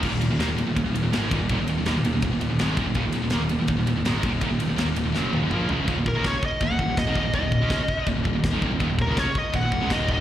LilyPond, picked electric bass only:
\new Staff \with { instrumentName = "Picked electric bass" } { \clef bass \time 4/4 \key ees \minor \tempo 4 = 164 ees,,16 ees,,16 ees,,16 ees,,16 ees,16 ees,,16 ees,,16 ees,,16 ees,,16 ees,,16 ees,,16 ees,,16 aes,,8 ees,,16 ees,,16 | ees,,16 ees,,16 ees,,16 ees,,16 ees,16 ees,,16 ees,,16 ees,,16 ees,,16 ees,,16 ees,,16 ees,,16 aes,,8 ees,,16 ees,,16 | ees,,16 ees,,16 ees,,16 ees,,16 ees,16 ees,,16 ees,,16 ees,,16 ees,,16 ees,,16 ees,,16 ees,,16 aes,,8 ees,,16 ees,,16 | ees,,16 ees,,16 ees,,16 ees,,16 ees,16 ees,,16 ees,,16 ees,,16 ges,,8 ees,,16 ges,,16 bes,,8 des,16 ges,,16 |
ees,,16 ees,,8 des,8 r8. ees,,16 ees,,16 ees,,16 ees,,8 aes,,16 ees,,16 ees,,16 | ees,,16 ees,,8 des,8 r8. ees,,16 ees,,16 ees,,16 ees,,8 aes,,16 ees,,16 ees,,16 | ees,,16 ees,,8 des,8 r8. ees,,16 ees,,16 ees,,16 des,16 ees,,4 | }